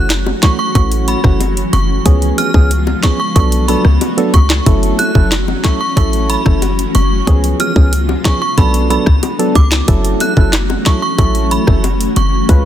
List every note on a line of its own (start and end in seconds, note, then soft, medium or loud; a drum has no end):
0.00 0.33 F#1 medium
0.00 2.03 E3 medium
0.00 2.03 F#3 medium
0.00 2.03 A3 medium
0.00 0.10 C#4 medium
0.00 2.03 C#4 medium
0.00 0.10 F#4 medium
0.00 2.03 F#4 medium
0.10 snare loud
0.10 clap medium
0.10 closed hi-hat medium
0.26 high bongo medium
0.42 0.59 E3 medium
0.42 0.59 A3 medium
0.42 0.59 C#4 medium
0.42 0.59 F#4 medium
0.42 0.53 C#6 medium
0.42 kick loud
0.42 snare loud
0.42 clap medium
0.42 closed hi-hat medium
0.42 low bongo medium
0.59 0.69 C#6 medium
0.75 1.15 A1 loud
0.75 1.20 E3 medium
0.75 1.20 A3 medium
0.75 1.20 C#4 medium
0.75 1.20 F#4 loud
0.75 0.85 C#6 medium
0.75 kick loud
0.75 closed hi-hat medium
0.92 closed hi-hat medium
1.08 1.18 B5 medium
1.08 closed hi-hat medium
1.24 1.64 F#1 medium
1.24 1.40 E3 medium
1.24 1.40 A3 medium
1.24 1.40 C#4 medium
1.24 1.41 F#4 medium
1.24 kick loud
1.24 cross-stick medium
1.24 high bongo medium
1.40 closed hi-hat medium
1.40 high bongo medium
1.57 closed hi-hat soft
1.73 1.99 F#1 medium
1.73 1.83 C#6 medium
1.73 closed hi-hat medium
1.73 high bongo medium
1.73 low bongo medium
2.05 2.32 C#2 loud
2.05 3.35 C#3 medium
2.05 2.50 F3 medium
2.05 3.35 F3 medium
2.05 3.35 G#3 medium
2.05 2.51 B3 medium
2.05 4.64 B3 medium
2.05 2.51 C#4 medium
2.05 3.35 F4 medium
2.05 2.51 G#4 loud
2.05 kick loud
2.05 closed hi-hat medium
2.22 closed hi-hat soft
2.38 2.48 F6 medium
2.38 closed hi-hat medium
2.38 high bongo medium
2.54 2.94 C#2 loud
2.54 2.71 F3 medium
2.54 2.71 B3 medium
2.54 2.71 C#4 medium
2.54 2.71 G#4 medium
2.54 kick loud
2.71 closed hi-hat medium
2.87 high bongo medium
3.03 3.20 F3 medium
3.03 3.20 B3 medium
3.03 3.20 C#4 medium
3.03 3.20 G#4 medium
3.03 3.13 C#6 medium
3.03 kick loud
3.03 snare loud
3.03 clap medium
3.03 closed hi-hat medium
3.03 low bongo medium
3.20 3.30 C#6 medium
3.36 3.76 B1 loud
3.36 3.66 F#3 loud
3.36 7.24 F#3 medium
3.36 7.24 A3 medium
3.36 3.66 B3 medium
3.36 3.66 D4 medium
3.36 4.65 D4 medium
3.36 4.65 F#4 medium
3.36 3.66 A4 loud
3.36 3.46 C#6 medium
3.36 kick loud
3.36 closed hi-hat medium
3.52 closed hi-hat medium
3.68 3.85 F#3 medium
3.68 3.85 B3 medium
3.68 3.85 D4 medium
3.68 3.85 A4 medium
3.68 3.78 B5 medium
3.68 closed hi-hat medium
3.85 3.98 C#2 medium
3.85 cross-stick medium
3.85 high bongo medium
4.01 closed hi-hat medium
4.01 high bongo medium
4.17 4.34 F#3 medium
4.17 4.34 B3 medium
4.17 4.34 D4 medium
4.17 4.34 A4 medium
4.17 closed hi-hat medium
4.34 4.60 C#2 loud
4.34 4.44 C#6 medium
4.34 kick loud
4.34 closed hi-hat medium
4.34 high bongo medium
4.34 low bongo medium
4.50 snare loud
4.50 clap loud
4.66 4.93 F#1 loud
4.66 7.25 E3 medium
4.66 5.11 F#3 medium
4.66 5.11 C#4 medium
4.66 7.25 C#4 medium
4.66 5.11 E4 medium
4.66 7.25 F#4 loud
4.66 5.12 A4 loud
4.66 kick loud
4.66 closed hi-hat medium
4.83 closed hi-hat soft
4.99 5.09 F#6 medium
4.99 closed hi-hat medium
4.99 high bongo medium
5.15 5.55 F#1 medium
5.15 5.31 F#3 medium
5.15 5.31 C#4 medium
5.15 5.32 E4 medium
5.15 5.32 A4 medium
5.15 kick loud
5.32 snare loud
5.32 clap medium
5.32 closed hi-hat medium
5.48 high bongo medium
5.64 5.80 F#3 medium
5.64 5.80 C#4 medium
5.64 5.80 E4 medium
5.64 5.81 A4 medium
5.64 5.74 C#6 medium
5.64 kick loud
5.64 snare loud
5.64 clap medium
5.64 closed hi-hat medium
5.64 low bongo medium
5.81 5.91 C#6 medium
5.96 6.37 A1 loud
5.96 6.42 F#3 loud
5.96 6.42 C#4 medium
5.96 6.42 E4 medium
5.96 6.42 A4 loud
5.96 6.07 C#6 medium
5.96 kick loud
5.96 closed hi-hat medium
6.13 closed hi-hat medium
6.30 6.40 B5 medium
6.30 closed hi-hat medium
6.45 6.86 F#1 medium
6.45 6.62 F#3 medium
6.45 6.62 C#4 medium
6.45 6.62 E4 medium
6.45 6.62 A4 medium
6.45 kick loud
6.45 cross-stick medium
6.45 high bongo medium
6.62 closed hi-hat medium
6.62 high bongo medium
6.79 closed hi-hat soft
6.95 7.21 F#1 loud
6.95 7.05 C#6 medium
6.95 closed hi-hat medium
6.95 high bongo medium
6.95 low bongo medium
7.27 7.54 C#2 loud
7.27 8.57 C#3 medium
7.27 7.72 F3 medium
7.27 8.57 F3 medium
7.27 8.57 G#3 medium
7.27 7.72 B3 medium
7.27 9.86 B3 medium
7.27 7.72 C#4 medium
7.27 8.57 F4 medium
7.27 7.72 G#4 loud
7.27 kick loud
7.27 closed hi-hat medium
7.44 closed hi-hat soft
7.60 7.70 F6 medium
7.60 closed hi-hat medium
7.60 high bongo medium
7.76 8.16 C#2 loud
7.76 7.92 F3 medium
7.76 7.92 B3 medium
7.76 7.92 C#4 medium
7.76 7.93 G#4 medium
7.76 kick loud
7.93 closed hi-hat medium
8.09 high bongo medium
8.24 8.41 F3 medium
8.24 8.41 B3 medium
8.24 8.41 C#4 medium
8.24 8.41 G#4 medium
8.24 8.35 C#6 medium
8.24 kick loud
8.24 snare loud
8.24 clap medium
8.24 closed hi-hat medium
8.24 low bongo medium
8.42 8.52 C#6 medium
8.57 8.97 B1 loud
8.57 8.88 F#3 medium
8.57 9.87 F#3 medium
8.57 12.45 A3 medium
8.57 8.88 B3 medium
8.57 8.88 D4 medium
8.57 9.87 D4 medium
8.57 9.87 F#4 medium
8.57 8.88 A4 loud
8.57 8.68 B5 medium
8.57 kick loud
8.57 closed hi-hat medium
8.74 closed hi-hat medium
8.90 9.06 F#3 medium
8.90 9.06 B3 medium
8.90 9.07 D4 medium
8.90 9.07 A4 medium
8.90 9.00 B5 medium
8.90 closed hi-hat medium
9.06 9.20 C#2 medium
9.06 kick loud
9.06 cross-stick medium
9.06 high bongo medium
9.23 closed hi-hat medium
9.23 high bongo medium
9.39 9.55 F#3 medium
9.39 9.55 B3 medium
9.39 9.55 D4 medium
9.39 9.56 A4 medium
9.39 closed hi-hat medium
9.55 9.82 C#2 loud
9.55 9.65 D6 medium
9.55 kick loud
9.55 closed hi-hat medium
9.55 high bongo medium
9.55 low bongo medium
9.72 snare loud
9.72 clap loud
9.88 10.15 F#1 loud
9.88 12.47 E3 medium
9.88 10.33 F#3 medium
9.88 12.47 F#3 medium
9.88 10.33 C#4 medium
9.88 12.47 C#4 medium
9.88 10.33 E4 medium
9.88 12.47 F#4 medium
9.88 10.33 A4 loud
9.88 kick loud
9.88 closed hi-hat medium
10.05 closed hi-hat soft
10.20 10.31 F#6 medium
10.20 closed hi-hat medium
10.20 high bongo medium
10.37 10.77 F#1 medium
10.37 10.53 F#3 medium
10.37 10.53 C#4 medium
10.37 10.53 E4 medium
10.37 10.53 A4 medium
10.37 kick loud
10.53 snare loud
10.53 clap medium
10.53 closed hi-hat medium
10.70 high bongo medium
10.86 11.02 F#3 medium
10.86 11.02 C#4 medium
10.86 11.02 E4 medium
10.86 11.02 A4 medium
10.86 10.96 C#6 medium
10.86 kick loud
10.86 snare loud
10.86 clap medium
10.86 closed hi-hat medium
10.86 low bongo medium
11.02 11.12 C#6 medium
11.18 11.58 A1 loud
11.18 11.63 F#3 loud
11.18 11.64 C#4 medium
11.18 11.64 E4 medium
11.18 11.64 A4 loud
11.18 11.29 C#6 medium
11.18 kick loud
11.18 closed hi-hat medium
11.35 closed hi-hat medium
11.51 11.61 B5 medium
11.51 closed hi-hat medium
11.67 12.07 F#1 loud
11.67 11.84 F#3 medium
11.67 11.84 C#4 medium
11.67 11.84 E4 medium
11.67 11.84 A4 medium
11.67 kick loud
11.67 cross-stick medium
11.67 high bongo medium
11.84 closed hi-hat medium
11.84 high bongo medium
12.01 closed hi-hat medium
12.16 12.43 F#1 loud
12.16 12.27 C#6 medium
12.16 closed hi-hat medium
12.16 high bongo medium
12.16 low bongo medium
12.49 12.65 C#2 loud
12.49 12.65 C#3 medium
12.49 12.65 F3 medium
12.49 12.65 G#3 loud
12.49 12.65 G#3 medium
12.49 12.65 B3 medium
12.49 12.65 C#4 medium
12.49 12.65 F4 medium
12.49 12.65 B4 loud
12.49 kick loud
12.49 closed hi-hat medium